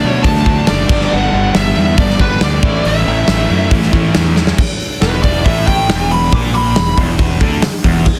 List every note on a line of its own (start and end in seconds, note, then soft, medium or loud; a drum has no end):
0.00 0.21 B2 medium
0.00 0.44 D3 medium
0.00 0.25 D3 medium
0.00 0.25 F#3 medium
0.00 0.45 A3 medium
0.00 0.25 A3 medium
0.00 0.44 D4 loud
0.00 0.26 D4 loud
0.00 0.07 D5 loud
0.07 0.27 C#5 loud
0.23 0.60 D2 loud
0.23 0.45 D3 medium
0.23 0.45 F#3 medium
0.23 0.45 A3 medium
0.23 0.64 A5 loud
0.23 kick loud
0.23 open hi-hat medium
0.27 0.46 D4 medium
0.36 snare soft
0.46 0.66 D3 loud
0.46 0.67 F#3 loud
0.46 0.67 A3 loud
0.46 0.68 D4 loud
0.46 kick loud
0.67 0.87 F#1 medium
0.67 0.88 D3 loud
0.67 0.88 F#3 medium
0.67 0.89 A3 loud
0.67 0.89 D4 loud
0.67 1.13 D5 medium
0.67 snare loud
0.67 open hi-hat medium
0.89 1.07 G1 medium
0.89 1.10 G2 loud
0.89 1.10 D3 loud
0.89 1.11 G3 loud
0.89 1.11 B3 loud
0.89 1.11 D4 loud
0.89 kick loud
0.89 crash loud
1.01 snare soft
1.11 1.30 G1 loud
1.11 1.32 G2 loud
1.11 1.32 D3 loud
1.11 1.33 G3 loud
1.11 1.33 B3 loud
1.11 1.33 D4 loud
1.11 1.57 F#5 medium
1.32 1.50 G1 loud
1.32 1.53 G2 loud
1.32 1.53 D3 loud
1.32 1.53 G3 medium
1.32 1.54 B3 loud
1.32 1.54 D4 loud
1.54 1.73 G1 medium
1.54 1.75 G2 loud
1.54 1.76 D3 medium
1.54 1.76 G3 loud
1.54 1.76 B3 medium
1.54 1.77 D4 loud
1.54 1.99 E5 loud
1.54 snare loud
1.54 open hi-hat medium
1.76 1.94 E2 medium
1.76 1.97 G2 medium
1.76 1.97 D3 medium
1.76 1.98 G3 medium
1.76 1.98 B3 medium
1.76 1.98 D4 loud
1.98 2.34 G1 medium
1.98 2.18 G2 medium
1.98 2.19 D3 medium
1.98 2.19 G3 medium
1.98 2.19 B3 medium
1.98 2.21 D4 medium
1.98 2.19 D5 loud
1.98 kick loud
1.98 open hi-hat medium
2.10 snare soft
2.20 2.41 G2 loud
2.20 2.42 D3 medium
2.20 2.42 G3 loud
2.20 2.42 B3 loud
2.20 2.43 D4 loud
2.20 2.41 B4 medium
2.20 kick loud
2.41 2.59 D2 medium
2.41 2.62 G2 medium
2.41 2.63 D3 medium
2.41 2.63 G3 loud
2.41 2.63 B3 loud
2.41 2.63 D4 loud
2.41 2.87 D5 medium
2.41 snare loud
2.41 open hi-hat medium
2.63 2.81 A1 medium
2.63 2.84 A2 loud
2.63 2.85 E3 loud
2.63 2.85 A3 loud
2.63 2.85 C#4 loud
2.63 2.86 E4 loud
2.63 kick loud
2.85 3.03 A1 medium
2.85 3.06 A2 loud
2.85 3.06 E3 loud
2.85 3.07 A3 loud
2.85 3.07 C#4 loud
2.85 3.07 E4 loud
2.85 3.69 E5 medium
2.85 open hi-hat medium
3.07 3.25 A1 loud
3.07 3.28 A2 medium
3.07 3.28 E3 medium
3.07 3.29 A3 medium
3.07 3.29 C#4 loud
3.07 3.29 E4 loud
3.28 3.46 A1 medium
3.28 3.49 A2 medium
3.28 3.49 E3 medium
3.28 3.50 A3 loud
3.28 3.50 C#4 loud
3.28 3.51 E4 loud
3.28 snare loud
3.28 open hi-hat medium
3.50 3.68 F#2 loud
3.50 3.70 A2 medium
3.50 3.71 E3 medium
3.50 3.71 A3 medium
3.50 3.71 C#4 medium
3.50 3.71 E4 loud
3.71 4.07 A1 medium
3.71 3.92 A2 medium
3.71 3.92 E3 medium
3.71 3.92 A3 medium
3.71 3.93 C#4 medium
3.71 3.94 E4 medium
3.71 kick loud
3.71 open hi-hat medium
3.82 snare soft
3.93 4.14 A2 medium
3.93 4.15 E3 loud
3.93 4.15 A3 loud
3.93 4.15 C#4 loud
3.93 4.16 E4 loud
3.93 kick loud
4.15 4.51 E2 medium
4.15 4.36 A2 loud
4.15 4.36 E3 medium
4.15 4.37 A3 loud
4.15 4.37 C#4 loud
4.15 4.38 E4 loud
4.15 snare loud
4.15 open hi-hat medium
4.36 4.58 A2 medium
4.36 4.58 E3 medium
4.36 4.58 A3 loud
4.36 4.58 C#4 medium
4.36 4.58 E4 loud
4.36 snare medium
4.47 snare loud
4.58 kick loud
4.58 crash loud
4.80 open hi-hat medium
5.02 5.43 E1 medium
5.02 5.45 E2 loud
5.02 5.22 B4 loud
5.02 snare loud
5.02 open hi-hat medium
5.23 5.44 D5 medium
5.23 kick medium
5.23 open hi-hat medium
5.44 5.86 A1 medium
5.44 5.89 A2 loud
5.44 5.66 E5 medium
5.44 kick loud
5.44 open hi-hat medium
5.67 6.09 G5 medium
5.67 kick medium
5.67 open hi-hat medium
5.88 6.29 E1 medium
5.88 6.32 E2 loud
5.88 snare loud
5.88 open hi-hat medium
6.11 6.32 B5 medium
6.11 open hi-hat medium
6.32 6.73 A#1 loud
6.32 6.77 A#2 loud
6.32 6.54 D6 medium
6.32 kick loud
6.32 open hi-hat medium
6.55 6.97 B5 loud
6.55 open hi-hat medium
6.76 6.97 E1 medium
6.76 6.94 E2 medium
6.76 snare loud
6.76 open hi-hat medium
6.97 7.38 E1 loud
6.97 7.40 E2 loud
6.97 kick medium
6.97 open hi-hat medium
7.19 kick loud
7.19 open hi-hat medium
7.40 7.61 D2 medium
7.40 7.62 D3 loud
7.40 kick loud
7.40 open hi-hat medium
7.62 muted distorted electric guitar stroke medium
7.62 muted overdriven electric guitar stroke medium
7.62 muted fingered electric bass stroke soft
7.62 snare loud
7.62 open hi-hat medium
7.84 8.05 E1 loud
7.84 8.05 E2 loud
7.84 kick medium
7.84 open hi-hat medium
8.06 kick medium
8.06 crash medium